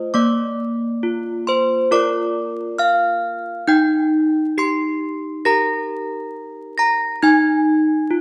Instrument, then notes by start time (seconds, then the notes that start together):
handbells
Already playing: A3 F4 C5 D#5 D#6
0.14 A#3 D5 D6
1.03 F4
1.47 C5 C6
1.91 F4 A#4 D5 D6
2.78 F5 F6
3.68 D#4 G5 G6
4.58 G4 C6 C7
5.45 G4 A#4 A#5 A#6
6.78 A#5 A#6
7.23 D#4 G#5 G#6
8.11 F4